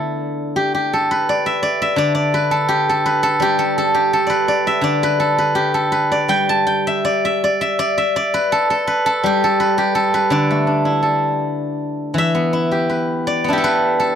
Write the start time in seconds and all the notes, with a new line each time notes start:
Already playing: D3 A3 D4 E4 A4 D5
0.56 G4
0.75 G4
0.93 A4
1.11 B4
1.29 D5
1.46 E5
1.63 D5
1.82 E5
1.96 D3 D5
2.15 D5
2.34 B4
2.51 A4
2.68 G4
2.89 A4
3.06 B4
3.23 A4
3.40 G3 G4
3.59 A4
3.78 A4
3.94 G4
4.13 A4
4.27 B4 D5
4.48 D5
4.67 E5
4.81 D3 D5
5.03 B4
5.20 A4
5.38 B4
5.55 G4
5.74 A4
5.92 B4
6.12 D5
6.28 G3 G5
6.49 A5
6.67 G5
6.87 E5
7.05 D5
7.25 E5
7.44 D5
7.61 E5
7.79 D5
7.98 E5
8.16 D5
8.34 B4
8.52 A4
8.70 A4
8.87 B4
9.06 A4
9.23 G3 G4
9.44 A4
9.60 B4
9.78 G4
9.95 A4
10.14 B4
10.30 D3 D5
10.51 A3
10.67 D4
10.85 E4
11.03 A4
12.14 E3
12.18 E5
12.35 B3
12.53 E4
12.71 G4
12.89 B4
13.27 D5
13.44 B3
13.48 D4 E4
13.53 G4
13.58 A4
13.64 B4
14.00 A4